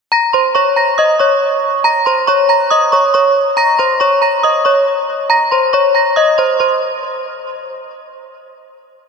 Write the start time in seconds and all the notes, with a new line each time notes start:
0.12 A#5 A#6
0.33 C5 C6
0.55 C#5 C#6
0.76 A#5 A#6
0.98 D#5 D#6
1.19 C#5 C#6
1.84 A#5 A#6
2.06 C5 C6
2.27 C#5 C#6
2.49 A#5 A#6
2.71 D#5 D#6
2.92 C#5 C#6
3.14 C#5 C#6
3.57 A#5 A#6
3.79 C5 C6
4.00 C#5 C#6
4.22 A#5 A#6
4.43 D#5 D#6
4.65 C#5 C#6
5.30 A#5 A#6
5.51 C5 C6
5.73 C#5 C#6
5.95 A#5 A#6
6.16 D#5 D#6
6.38 C5 C6
6.60 C5 C6